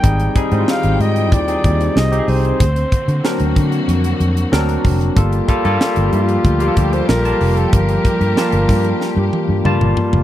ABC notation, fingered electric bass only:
X:1
M:4/4
L:1/16
Q:1/4=94
K:Gm
V:1 name="Fingered electric bass" clef=bass
_A,,,2 z _A,, z A,,, A,,2 E,,2 E,,2 C,,2 C,,2 | D,,2 z D, z D,, D,2 ^E,,2 E,,2 D,,2 ^E,,,2 | G,,,2 z G,, z G,,, G,,2 D,,2 D,,2 B,,,2 F,,,2 | G,,,2 z G,, z G,,, G,,2 z G,, z G,, G,, G,,, z F,,, |]